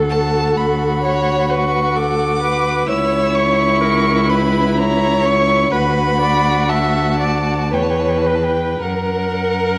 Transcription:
0.00 2.88 D2 medium
0.00 1.02 A4 medium
0.08 2.84 F#4 medium
0.08 0.58 A5 loud
0.57 1.51 B5 medium
1.02 1.51 C#5 loud
1.50 1.97 B4 medium
1.50 1.97 C#6 loud
1.95 2.41 A4 medium
1.95 2.88 D6 loud
2.41 2.90 B4 medium
2.88 5.69 C#2 loud
2.88 5.68 E4 medium
2.88 3.83 C#5 loud
2.88 3.36 E6 loud
3.35 4.31 C#6 loud
3.81 4.31 A#4 medium
4.29 4.80 B4 medium
4.29 4.79 B5 loud
4.77 5.73 C#5 loud
4.77 5.27 A#5 loud
5.25 5.72 C#6 loud
5.72 7.74 D2 medium
5.72 7.69 F#4 medium
5.72 6.19 B4 medium
5.72 6.71 B5 loud
6.20 6.70 D5 medium
6.69 7.19 E5 loud
6.69 7.75 A5 loud
7.20 7.72 D5 medium
7.71 8.81 E2 medium
7.71 8.77 B4 medium
7.71 8.28 C#5 medium
7.71 7.84 G5 medium
7.82 7.92 A5 medium
7.90 8.01 G5 medium
7.99 8.10 A5 medium
8.09 8.19 G5 medium
8.18 8.28 A5 medium
8.26 8.83 B4 medium
8.26 8.36 G5 medium
8.35 8.45 A5 medium
8.44 8.81 G5 medium
8.80 9.78 F#2 medium
8.80 9.78 A#4 medium
8.80 9.78 F#5 loud

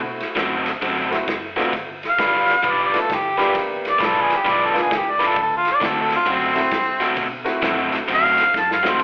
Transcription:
0.00 0.23 B2 loud
0.00 0.34 A3 medium
0.00 0.34 E4 medium
0.00 0.34 F#4 medium
0.00 0.34 C5 medium
0.20 snare soft
0.20 ride medium
0.35 0.69 F#2 medium
0.35 0.70 D3 medium
0.35 0.71 A3 medium
0.35 0.71 C4 medium
0.35 0.71 F#4 medium
0.35 kick medium
0.35 snare loud
0.35 ride medium
0.66 snare soft
0.66 ride medium
0.82 1.14 F#2 medium
0.82 1.16 D3 medium
0.82 1.16 A3 medium
0.82 1.17 C4 medium
0.82 1.17 F#4 medium
0.82 kick medium
0.82 ride medium
1.11 1.26 A3 medium
1.11 1.26 C4 medium
1.11 1.26 E4 medium
1.11 1.26 F#4 medium
1.11 snare soft
1.11 ride medium
1.28 1.59 F#1 medium
1.28 kick medium
1.28 snare loud
1.28 ride medium
1.57 1.73 D3 medium
1.57 1.71 A3 medium
1.57 1.74 A3 medium
1.57 1.72 B3 medium
1.57 1.73 C4 medium
1.57 1.72 D4 medium
1.57 1.72 F4 medium
1.57 1.73 F#4 medium
1.57 snare soft
1.57 ride medium
1.73 2.05 G1 loud
1.73 kick medium
1.73 snare soft
1.73 ride medium
2.03 snare soft
2.03 ride medium
2.09 2.65 F5 medium
2.18 2.50 G1 medium
2.18 2.53 G3 medium
2.18 2.53 D4 medium
2.18 2.53 F4 medium
2.18 2.53 B4 medium
2.18 kick medium
2.18 snare loud
2.18 ride medium
2.48 snare soft
2.48 ride medium
2.63 2.96 B1 medium
2.63 2.97 G3 medium
2.63 2.98 D4 medium
2.63 2.98 F4 medium
2.63 2.98 B4 medium
2.63 kick medium
2.63 ride medium
2.69 2.81 D5 medium
2.85 3.00 D5 medium
2.94 3.08 A3 medium
2.94 3.08 B3 medium
2.94 3.08 D4 medium
2.94 3.09 F4 medium
2.94 snare soft
2.94 ride medium
2.99 3.16 A4 medium
3.10 3.41 G1 medium
3.10 kick medium
3.10 snare loud
3.10 ride medium
3.14 3.56 G4 loud
3.38 3.55 G3 medium
3.38 3.97 A#3 medium
3.38 3.97 B3 medium
3.38 3.55 D4 medium
3.38 3.97 D4 medium
3.38 3.55 F4 medium
3.38 3.97 G4 medium
3.38 3.54 B4 medium
3.38 snare soft
3.38 ride medium
3.55 3.87 G#1 medium
3.55 kick medium
3.55 snare soft
3.55 ride medium
3.85 snare soft
3.85 ride medium
3.90 4.06 D5 medium
3.99 4.32 B1 medium
3.99 4.33 G#3 medium
3.99 4.34 D4 medium
3.99 4.34 F4 medium
3.99 4.34 B4 medium
3.99 kick medium
3.99 snare loud
3.99 ride medium
4.05 4.22 A4 medium
4.21 4.38 G#4 medium
4.30 snare soft
4.30 ride medium
4.37 4.52 G4 medium
4.45 4.78 B1 medium
4.45 4.79 G#3 medium
4.45 4.79 D4 medium
4.45 4.80 F4 medium
4.45 4.80 B4 medium
4.45 kick medium
4.45 snare soft
4.45 ride medium
4.50 4.67 D5 medium
4.66 4.78 A4 medium
4.73 4.89 A#3 medium
4.73 4.89 B3 medium
4.73 4.89 D4 medium
4.73 4.89 F4 medium
4.73 snare soft
4.73 ride medium
4.81 4.93 G#4 medium
4.91 5.22 C#2 medium
4.91 kick medium
4.91 snare loud
4.91 ride medium
4.96 5.13 G4 medium
5.11 5.29 D5 medium
5.20 5.37 G#3 medium
5.20 5.37 D4 medium
5.20 5.36 F4 medium
5.20 5.36 B4 medium
5.20 snare soft
5.20 ride medium
5.28 5.39 A4 medium
5.36 5.68 D2 medium
5.36 kick medium
5.36 ride medium
5.42 5.54 A4 medium
5.57 5.69 F4 medium
5.65 snare soft
5.65 ride medium
5.71 5.87 D5 medium
5.81 6.13 D2 medium
5.81 6.15 D3 medium
5.81 6.15 A3 medium
5.81 6.16 C4 medium
5.81 6.16 F#4 medium
5.81 kick medium
5.81 snare loud
5.81 ride medium
5.85 5.98 A4 medium
6.01 6.14 A4 medium
6.10 snare soft
6.10 ride medium
6.16 6.33 F4 medium
6.26 6.58 F#2 medium
6.26 6.60 D3 medium
6.26 6.61 A3 medium
6.26 6.61 C4 medium
6.26 6.61 F#4 medium
6.26 kick medium
6.26 ride medium
6.31 7.17 C4 loud
6.54 6.70 A3 medium
6.54 6.70 C4 medium
6.54 6.70 E4 medium
6.54 6.70 F#4 medium
6.54 snare soft
6.54 ride medium
6.71 7.04 G2 medium
6.71 kick medium
6.71 snare loud
6.71 ride medium
7.00 7.27 D3 medium
7.00 7.27 A3 medium
7.00 7.26 C4 medium
7.00 7.26 F#4 medium
7.00 snare soft
7.00 ride medium
7.16 7.49 B2 medium
7.16 kick medium
7.16 ride medium
7.44 8.04 A3 medium
7.44 8.04 C4 medium
7.44 8.04 E4 medium
7.44 8.04 F#4 medium
7.44 snare soft
7.44 ride medium
7.62 7.94 F#2 medium
7.62 7.97 D3 medium
7.62 7.97 A3 medium
7.62 7.97 C4 medium
7.62 7.97 F#4 medium
7.62 kick medium
7.62 snare loud
7.62 ride medium
7.92 snare soft
7.92 ride medium
8.08 8.40 F#2 medium
8.08 8.42 D3 medium
8.08 8.43 A3 medium
8.08 8.43 C4 medium
8.08 8.43 F#4 medium
8.08 kick medium
8.08 snare soft
8.08 ride medium
8.14 8.61 F5 loud
8.38 snare soft
8.38 ride medium
8.54 8.86 F#2 medium
8.54 kick medium
8.54 snare medium
8.59 8.71 A5 medium
8.71 8.91 F5 medium
8.71 snare medium
8.83 9.00 D3 medium
8.83 9.00 A3 medium
8.83 8.99 C4 medium
8.83 8.99 F#4 medium
8.83 snare medium
8.90 9.04 C5 medium
9.00 9.04 A1 loud
9.00 kick medium
9.00 ride medium

